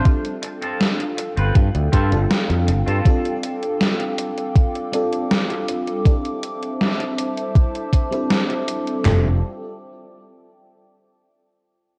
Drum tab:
HH |xxxxxxxxxxxxxxxx|xxxxxxxxxxxxxxxx|xxxxxxxxxxxxxxxx|----------------|
CP |----------------|----------------|----------------|x---------------|
SD |----o-------o---|----o-------o---|----o-------o---|o---------------|
FT |----------------|----------------|----------------|o---------------|
BD |o-------o-o-----|o-------o-------|o-------o-o-----|----------------|